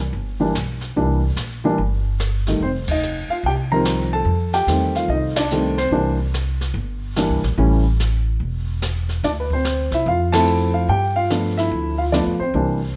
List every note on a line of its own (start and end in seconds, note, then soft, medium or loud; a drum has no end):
0.13 0.52 G1 medium
0.13 brush sweep soft
0.40 0.53 E3 medium
0.40 0.53 G3 medium
0.40 0.54 A#3 medium
0.40 0.54 D4 medium
0.55 0.93 B1 medium
0.55 snare medium
0.55 hi-hat pedal medium
0.81 snare soft
0.96 1.35 C2 medium
0.96 1.21 E3 medium
0.96 1.21 G3 medium
0.96 1.21 A#3 soft
0.96 1.21 D4 medium
0.96 brush sweep soft
1.36 1.76 A#1 medium
1.36 snare medium
1.36 hi-hat pedal medium
1.64 1.77 E3 medium
1.64 1.78 G3 medium
1.64 1.78 A#3 medium
1.64 1.78 D4 medium
1.78 2.57 G1 medium
1.78 brush sweep soft
2.20 snare medium
2.20 hi-hat pedal medium
2.47 2.61 D#3 medium
2.47 2.61 G3 soft
2.47 2.61 A3 soft
2.47 2.61 D#4 medium
2.47 snare soft
2.60 3.26 F1 medium
2.60 2.69 C4 medium
2.60 2.68 C5 medium
2.60 brush sweep soft
2.88 3.33 D#5 medium
2.88 kick medium
2.88 ride medium
2.92 3.29 D#4 medium
3.03 hi-hat pedal soft
3.29 3.36 F4 medium
3.29 3.35 F5 medium
3.29 muted upright bass stroke soft
3.43 4.23 C2 medium
3.43 3.52 G5 medium
3.43 brush sweep soft
3.48 3.54 G4 medium
3.72 4.25 D#3 medium
3.72 4.25 F3 medium
3.72 4.25 G3 medium
3.72 4.25 C4 medium
3.72 4.11 A#4 medium
3.72 4.10 A#5 medium
3.85 snare medium
3.85 hi-hat pedal medium
4.13 4.52 A4 medium
4.13 4.51 A5 medium
4.25 4.64 F2 medium
4.25 brush sweep soft
4.53 4.93 G4 medium
4.53 4.97 G5 medium
4.53 snare soft
4.67 5.06 E2 medium
4.67 5.31 D#3 soft
4.67 5.31 G3 soft
4.67 5.32 A3 medium
4.67 5.32 C4 medium
4.67 snare medium
4.67 hi-hat pedal soft
4.95 5.10 F4 medium
4.95 5.09 F5 medium
4.95 snare soft
5.08 5.88 C2 medium
5.08 5.36 D#4 medium
5.08 5.38 D#5 medium
5.08 brush sweep soft
5.36 5.77 D4 medium
5.36 5.75 D5 medium
5.36 snare medium
5.36 ride medium
5.51 5.76 D#3 medium
5.51 5.76 G3 soft
5.51 5.76 A3 medium
5.51 5.76 C4 medium
5.51 hi-hat pedal medium
5.78 6.18 C4 soft
5.78 6.16 C5 medium
5.78 snare soft
5.91 6.71 C2 medium
5.91 6.16 E3 medium
5.91 6.17 G3 soft
5.91 6.17 A#3 medium
5.91 6.17 D4 medium
5.91 brush sweep soft
6.34 snare medium
6.34 hi-hat pedal medium
6.61 snare soft
6.74 7.26 G1 medium
6.74 brush sweep soft
7.16 7.41 E3 medium
7.16 7.41 G3 medium
7.16 7.41 A#3 medium
7.16 7.41 D4 medium
7.16 snare medium
7.16 hi-hat pedal medium
7.29 7.43 C2 medium
7.43 7.57 A#1 medium
7.43 snare soft
7.58 8.37 A1 medium
7.58 7.82 E3 medium
7.58 7.83 G3 medium
7.58 7.83 A3 medium
7.58 7.83 C#4 medium
7.58 brush sweep soft
8.00 snare medium
8.00 hi-hat pedal medium
8.40 9.19 E1 medium
8.40 brush sweep soft
8.82 snare medium
8.82 hi-hat pedal medium
9.09 snare soft
9.23 9.88 D2 medium
9.23 9.29 D4 medium
9.23 9.29 D5 medium
9.23 brush sweep medium
9.23 snare soft
9.40 9.50 B4 medium
9.50 9.91 C4 medium
9.50 9.94 C5 medium
9.50 kick medium
9.64 snare medium
9.64 hi-hat pedal medium
9.91 10.05 C2 medium
9.91 10.07 E4 medium
9.91 10.06 E5 medium
9.91 snare soft
10.06 10.85 F2 medium
10.06 10.33 F4 medium
10.06 10.35 F5 medium
10.06 brush sweep soft
10.32 10.86 F3 medium
10.32 10.87 A3 medium
10.32 10.87 C4 medium
10.32 10.87 E4 medium
10.32 10.72 A4 medium
10.32 10.76 A5 loud
10.32 snare medium
10.32 ride medium
10.46 hi-hat pedal medium
10.74 10.89 F4 medium
10.74 10.88 F5 medium
10.89 11.68 G2 medium
10.89 11.15 G4 medium
10.89 11.17 G5 medium
10.89 brush sweep medium
11.16 11.55 F4 medium
11.16 11.59 F5 medium
11.30 11.94 F3 medium
11.30 11.94 A3 soft
11.30 11.94 B3 soft
11.30 11.94 D4 medium
11.30 snare medium
11.30 hi-hat pedal soft
11.57 11.97 E4 medium
11.57 12.00 E5 medium
11.57 snare soft
11.71 12.23 D2 medium
11.71 brush sweep soft
11.98 12.06 F4 medium
11.98 12.03 F5 medium
12.12 12.37 F3 medium
12.12 12.37 A3 medium
12.12 12.38 B3 medium
12.12 12.21 D4 medium
12.12 12.38 F4 medium
12.12 12.19 D5 medium
12.12 snare medium
12.12 hi-hat pedal medium
12.26 12.39 F2 medium
12.40 12.53 D2 medium
12.40 12.93 C4 medium
12.40 12.92 C5 medium
12.54 12.96 C2 medium
12.54 12.79 E3 medium
12.54 12.79 G3 medium
12.54 12.79 A#3 medium
12.54 12.79 D4 medium
12.54 brush sweep soft